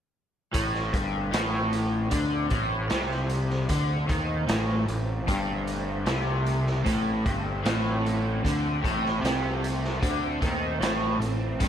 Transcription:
0.53 0.91 A1 medium
0.53 0.92 A2 loud
0.53 11.68 A3 medium
0.53 11.68 C4 medium
0.53 kick loud
0.53 closed hi-hat loud
0.75 snare soft
0.93 1.30 G1 medium
0.93 1.32 G2 medium
0.93 kick loud
0.93 closed hi-hat medium
1.32 2.08 A1 medium
1.32 2.10 A2 loud
1.32 snare loud
1.32 closed hi-hat loud
1.73 closed hi-hat medium
2.10 2.49 D2 medium
2.10 2.50 D3 loud
2.10 kick loud
2.10 closed hi-hat loud
2.50 2.88 A1 medium
2.50 2.89 A2 loud
2.50 kick loud
2.50 closed hi-hat medium
2.90 3.67 C2 medium
2.90 3.68 C3 medium
2.90 snare medium
2.90 closed hi-hat medium
3.11 snare soft
3.29 closed hi-hat medium
3.50 snare soft
3.69 4.07 D2 medium
3.69 4.07 D3 loud
3.69 kick loud
3.69 closed hi-hat loud
4.07 4.47 D#2 loud
4.07 4.46 D#3 medium
4.07 kick loud
4.07 closed hi-hat medium
4.47 4.86 A1 medium
4.47 4.85 A2 loud
4.47 snare loud
4.47 closed hi-hat loud
4.86 5.26 A1 medium
4.86 5.19 A2 medium
4.86 closed hi-hat medium
5.27 6.04 G1 medium
5.27 6.06 G2 loud
5.27 kick loud
5.27 closed hi-hat medium
5.67 closed hi-hat medium
6.06 6.82 C2 loud
6.06 6.84 C3 medium
6.06 snare medium
6.06 closed hi-hat medium
6.46 closed hi-hat medium
6.67 snare soft
6.84 7.23 A1 loud
6.84 7.24 A2 loud
6.84 kick loud
6.84 closed hi-hat medium
7.25 7.63 G1 loud
7.25 7.64 G2 medium
7.25 kick loud
7.25 closed hi-hat medium
7.64 8.40 A1 loud
7.64 8.43 A2 loud
7.64 snare loud
7.64 closed hi-hat loud
8.06 closed hi-hat medium
8.44 8.82 D2 medium
8.44 8.82 D3 medium
8.44 kick loud
8.44 closed hi-hat loud
8.82 9.21 A1 medium
8.82 9.22 A2 loud
8.82 kick loud
8.82 closed hi-hat medium
9.06 snare soft
9.22 9.99 C2 medium
9.22 10.01 C3 loud
9.22 snare medium
9.22 closed hi-hat medium
9.64 closed hi-hat medium
9.85 snare soft
10.02 10.40 D2 medium
10.02 10.41 D3 loud
10.02 kick loud
10.02 closed hi-hat medium
10.41 10.79 D#2 medium
10.41 10.80 D#3 medium
10.41 kick loud
10.41 closed hi-hat medium
10.81 11.18 A1 medium
10.81 11.19 A2 loud
10.81 snare loud
10.81 closed hi-hat medium
11.20 11.58 A1 medium
11.20 11.53 A2 medium
11.20 closed hi-hat medium
11.60 11.68 G1 medium
11.60 11.68 G2 loud
11.60 kick loud
11.60 closed hi-hat medium

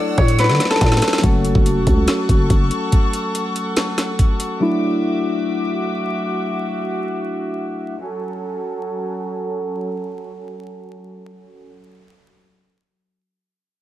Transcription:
0.00 1.19 F#3 medium
0.00 1.19 A3 medium
0.00 1.19 D4 medium
0.00 1.20 D4 medium
0.00 1.20 E4 medium
0.00 0.70 A4 medium
0.00 0.39 B4 medium
0.00 0.24 D5 medium
0.00 1.20 F#5 medium
0.00 1.20 E6 medium
0.18 0.51 A2 loud
0.18 2.09 C#5 medium
0.18 kick loud
0.18 closed hi-hat soft
0.28 closed hi-hat medium
0.39 2.44 B4 medium
0.39 snare medium
0.39 closed hi-hat medium
0.44 snare medium
0.49 0.59 D3 loud
0.49 snare medium
0.55 snare medium
0.60 snare medium
0.60 closed hi-hat medium
0.65 snare medium
0.70 2.90 A4 medium
0.70 snare medium
0.76 snare medium
0.81 1.01 A2 loud
0.81 kick medium
0.81 snare medium
0.81 closed hi-hat medium
0.87 snare medium
0.92 snare loud
0.97 snare medium
1.02 snare loud
1.02 closed hi-hat medium
1.08 snare medium
1.13 snare loud
1.18 4.56 F#3 medium
1.18 snare loud
1.22 1.54 F#1 loud
1.22 4.57 A3 medium
1.22 4.57 C#4 medium
1.22 4.58 F#4 medium
1.22 4.58 A4 medium
1.22 4.58 F#5 medium
1.22 4.58 C#6 medium
1.22 kick loud
1.22 closed hi-hat medium
1.45 closed hi-hat medium
1.55 1.78 F#1 loud
1.55 kick loud
1.66 closed hi-hat medium
1.76 1.86 E1 loud
1.87 2.07 C#2 loud
1.87 kick loud
1.87 closed hi-hat medium
2.08 snare loud
2.08 closed hi-hat medium
2.29 2.49 F#1 loud
2.29 kick medium
2.29 closed hi-hat medium
2.50 2.70 F#1 loud
2.50 kick medium
2.50 closed hi-hat medium
2.71 closed hi-hat medium
2.92 kick loud
2.92 closed hi-hat medium
3.13 closed hi-hat medium
3.35 closed hi-hat medium
3.56 closed hi-hat medium
3.77 snare loud
3.77 closed hi-hat medium
3.98 snare medium
3.98 closed hi-hat medium
4.19 kick medium
4.19 closed hi-hat medium
4.40 closed hi-hat medium
4.60 7.95 F#3 medium
4.60 7.95 A3 medium
4.60 7.96 D4 medium
4.60 7.96 E4 medium
4.60 7.96 F#4 medium
4.60 7.96 E5 medium
4.60 7.96 D6 medium
7.99 11.72 F#3 medium
7.99 11.72 C#4 medium
7.99 11.71 A4 medium

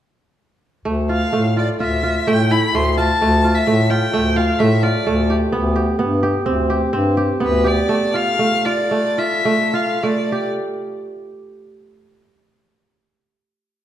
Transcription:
0.85 1.23 D2 medium
0.85 1.32 A3 medium
1.09 1.56 F4 medium
1.09 1.54 F5 medium
1.32 1.70 A2 medium
1.32 2.27 A3 medium
1.57 1.80 F4 medium
1.57 1.69 D5 medium
1.79 2.17 D2 medium
1.79 2.03 F4 medium
1.79 2.29 E5 medium
2.03 2.57 F4 medium
2.26 2.65 A2 medium
2.26 2.74 A3 medium
2.26 2.53 G5 medium
2.51 3.04 E4 medium
2.51 2.76 B5 medium
2.74 3.11 D2 medium
2.74 3.21 A3 medium
2.74 2.97 C6 medium
2.98 3.44 F4 medium
2.98 3.57 A5 medium
3.20 3.58 D2 medium
3.20 3.67 A3 medium
3.44 3.90 F4 medium
3.55 3.92 E5 medium
3.66 4.04 A2 medium
3.66 4.13 A3 medium
3.90 4.36 F4 medium
3.90 4.38 G5 medium
4.13 4.51 D2 medium
4.13 4.60 A3 medium
4.36 4.83 F4 medium
4.36 4.60 F5 medium
4.59 4.98 A2 medium
4.59 5.06 A3 medium
4.59 4.85 E5 medium
4.83 6.34 F4 medium
4.83 5.30 D5 medium
5.06 5.44 D2 medium
5.06 7.06 A3 medium
5.30 5.75 G4 medium
5.52 5.91 D2 medium
5.52 5.99 B3 medium
5.76 6.22 G4 medium
5.99 6.37 G2 medium
5.99 6.52 B3 medium
6.23 6.69 G4 medium
6.46 6.84 D2 medium
6.46 6.93 C4 medium
6.70 7.17 G4 medium
6.93 7.32 G2 medium
6.93 7.46 C4 medium
7.17 7.64 G4 medium
7.40 7.81 D2 medium
7.40 9.27 B3 medium
7.45 7.69 B4 medium
7.64 9.05 G4 medium
7.64 8.17 D5 medium
7.89 8.39 A3 medium
8.14 8.65 F4 medium
8.14 8.67 F5 medium
8.39 8.91 A3 medium
8.65 9.18 F4 medium
8.65 9.20 D5 medium
8.91 9.45 A3 medium
9.18 9.73 F4 medium
9.18 9.76 E5 medium
9.45 10.03 A3 medium
9.73 11.25 F4 medium
9.73 10.04 F5 medium
10.03 12.03 A3 medium
10.03 10.47 D5 medium
10.32 11.73 G4 medium

